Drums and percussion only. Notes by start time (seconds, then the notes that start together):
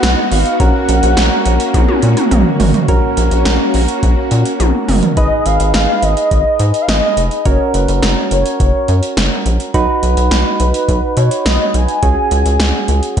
0.03 snare, closed hi-hat
0.32 open hi-hat
0.46 closed hi-hat
0.60 kick, closed hi-hat
0.89 closed hi-hat
1.03 closed hi-hat
1.17 snare, closed hi-hat
1.45 closed hi-hat
1.60 closed hi-hat
1.74 kick, closed hi-hat, high tom
1.88 high tom
2.02 closed hi-hat
2.17 closed hi-hat, mid tom
2.31 closed hi-hat, mid tom
2.60 floor tom, open hi-hat
2.74 closed hi-hat, floor tom
2.88 kick, closed hi-hat
3.17 closed hi-hat
3.31 closed hi-hat
3.45 snare, closed hi-hat
3.74 open hi-hat
3.88 closed hi-hat
4.03 kick, closed hi-hat
4.31 closed hi-hat
4.45 closed hi-hat
4.60 closed hi-hat, high tom
4.88 mid tom, open hi-hat
5.03 closed hi-hat, floor tom
5.17 kick, closed hi-hat
5.46 closed hi-hat
5.60 closed hi-hat
5.74 snare, closed hi-hat
6.03 closed hi-hat
6.17 closed hi-hat
6.31 kick, closed hi-hat
6.59 closed hi-hat
6.74 closed hi-hat
6.89 snare, closed hi-hat
7.17 closed hi-hat
7.31 closed hi-hat
7.46 kick, closed hi-hat
7.74 closed hi-hat
7.88 closed hi-hat
8.03 snare, closed hi-hat
8.31 closed hi-hat
8.46 closed hi-hat
8.60 kick, closed hi-hat
8.88 closed hi-hat
9.03 closed hi-hat
9.17 snare, closed hi-hat
9.46 closed hi-hat
9.60 closed hi-hat
9.74 kick, closed hi-hat
10.03 closed hi-hat
10.17 closed hi-hat
10.31 snare, closed hi-hat
10.60 closed hi-hat
10.74 closed hi-hat
10.89 kick, closed hi-hat
11.17 closed hi-hat
11.31 closed hi-hat
11.46 snare, closed hi-hat
11.74 closed hi-hat
11.88 closed hi-hat
12.03 kick, closed hi-hat
12.31 closed hi-hat
12.46 closed hi-hat
12.60 snare, closed hi-hat
12.88 closed hi-hat
13.03 closed hi-hat